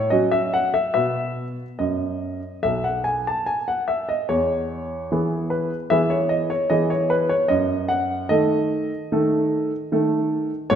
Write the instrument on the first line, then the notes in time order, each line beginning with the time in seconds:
grand piano
Already playing: C#5
0.10 F#3 C#4 F#4 D#5
0.32 E5
0.54 F#5
0.74 E5
0.94 B2 B3 F#4 E5
1.79 F#2 D#5
2.63 B1 E5
2.84 F#5
3.04 G#5
3.27 A5
3.46 G#5
3.68 F#5
3.88 E5
4.09 D#5
4.29 E2 C#5
5.12 E3 B3 G#4
5.50 B4
5.90 E3 B3 G#4 E5
6.10 C#5
6.29 D#5
6.50 C#5
6.70 E3 B3 G#4 D#5
6.90 C#5
7.10 B4
7.29 C#5
7.48 F#2 D#5
7.88 F#5
8.29 D#3 A3 A4 D#5
9.12 D#3 A3 A4
9.92 D#3 A3 A4
10.70 G#2 C#5